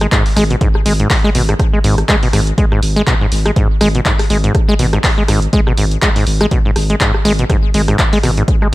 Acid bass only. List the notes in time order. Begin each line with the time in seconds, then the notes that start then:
0.01 G#3
0.12 G#2
0.36 G#3
0.50 B2
0.61 G#2
0.86 G#3
1.00 G#2
1.24 G#3
1.35 B2
1.49 G#2
1.73 G#3
1.84 G#2
2.09 G#3
2.23 B2
2.33 G#2
2.58 G#3
2.72 G#2
2.96 G#3
3.07 B2
3.21 G#2
3.46 G#3
3.56 G#2
3.81 G#3
3.95 B2
4.06 G#2
4.30 G#3
4.44 G#2
4.69 G#3
4.79 B2
4.93 G#2
5.18 G#3
5.28 G#2
5.53 G#3
5.67 B2
5.78 G#2
6.02 G#3
6.16 G#2
6.41 G#3
6.51 B2
6.65 G#2
6.90 G#3
7.01 G#2
7.25 G#3
7.39 B2
7.50 G#2
7.74 G#3
7.88 G#2
8.13 G#3
8.24 B2
8.37 G#2
8.62 G#3